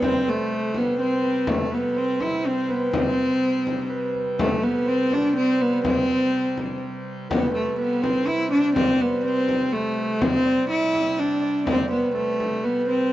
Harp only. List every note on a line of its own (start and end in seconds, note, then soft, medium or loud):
0.00 0.82 C5 medium
0.00 1.15 D5 medium
0.00 0.78 E5 medium
0.27 1.47 A4 medium
0.76 1.06 B4 medium
1.00 1.29 C5 medium
1.23 1.71 B4 medium
1.47 3.67 A4 medium
1.71 2.02 B4 medium
1.96 2.44 C5 medium
2.20 3.93 E5 medium
2.45 2.75 C5 medium
2.69 3.00 B4 medium
2.94 3.96 C5 medium
3.90 4.62 B4 medium
4.40 6.59 A4 medium
4.63 4.92 B4 medium
4.86 5.36 C5 medium
5.12 6.97 D5 medium
5.36 5.67 C5 medium
5.61 5.91 B4 medium
5.85 7.36 C5 medium
7.30 7.78 B4 medium
7.54 9.72 A4 medium
7.78 8.08 B4 medium
8.02 8.76 C5 medium
8.27 9.99 E5 medium
8.51 10.35 D5 medium
8.76 9.06 C5 medium
9.00 9.30 B4 medium
9.24 10.20 C5 medium
9.72 11.92 A4 medium
10.20 11.66 C5 medium
10.45 11.17 D5 medium
10.69 10.93 E5 medium
10.94 12.66 E5 medium
11.17 11.41 D5 medium
11.41 13.13 D5 medium
11.66 11.96 C5 medium
11.90 12.63 B4 medium
12.15 12.39 A4 medium
12.39 13.13 A4 medium
12.64 12.93 B4 medium
12.87 13.13 C5 medium